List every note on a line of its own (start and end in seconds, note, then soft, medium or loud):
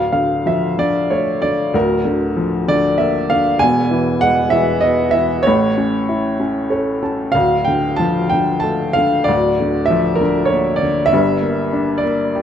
0.00 1.71 D1 medium
0.00 1.71 D2 medium
0.00 0.11 F5 medium
0.12 0.77 D3 soft
0.12 0.46 F5 medium
0.46 1.71 F3 soft
0.46 0.77 E5 medium
0.78 1.41 D3 soft
0.78 1.09 D5 medium
1.10 1.73 A3 soft
1.10 1.44 C#5 medium
1.42 1.73 D3 soft
1.42 1.75 D5 medium
1.74 3.56 D1 medium
1.74 3.56 D2 medium
1.74 2.72 A#4 medium
2.05 2.67 D3 medium
2.37 3.56 F3 medium
2.68 3.28 D3 medium
2.68 2.97 D5 medium
2.98 3.58 A#3 medium
2.98 3.27 E5 medium
3.30 3.60 D3 soft
3.30 3.61 F5 medium
3.59 5.40 E1 medium
3.59 5.41 E2 medium
3.59 4.23 G#5 loud
3.91 4.51 E3 medium
4.21 5.41 G#3 medium
4.21 4.53 F#5 loud
4.50 5.13 E3 medium
4.50 4.83 E5 loud
4.81 5.44 B3 medium
4.81 5.14 D#5 medium
5.11 5.44 E3 medium
5.11 5.45 E5 loud
5.43 6.34 C#5 medium
5.47 7.32 A1 medium
5.47 7.32 A2 medium
5.78 6.38 C#4 soft
6.09 7.31 E4 medium
6.40 7.01 C#4 soft
6.70 7.33 A4 soft
6.70 7.00 C#5 medium
7.03 7.34 C#4 soft
7.03 7.33 A5 soft
7.32 9.25 D1 medium
7.32 9.25 D2 medium
7.32 7.67 F5 medium
7.65 8.31 D3 soft
7.65 7.96 G5 medium
7.96 9.25 F3 medium
7.96 8.29 A5 medium
8.30 8.95 D3 medium
8.30 8.61 G5 medium
8.60 9.26 A3 medium
8.60 8.96 A5 medium
8.93 9.27 D3 medium
8.93 9.28 F5 medium
9.24 9.91 D5 medium
9.28 11.09 D1 medium
9.28 11.09 D2 medium
9.60 10.19 D3 medium
9.86 10.20 E5 medium
9.90 11.09 F3 medium
10.15 10.47 A#4 medium
10.21 10.81 D3 medium
10.45 10.80 C#5 medium
10.52 11.11 A#3 medium
10.76 11.07 D5 medium
10.83 11.12 D3 medium
11.06 12.02 E5 loud
11.13 12.42 G1 medium
11.13 12.42 G2 medium
11.42 12.02 A#3 medium
11.73 12.42 D4 medium
11.98 12.42 D5 medium
12.04 12.42 A#3 medium
12.35 12.42 G4 medium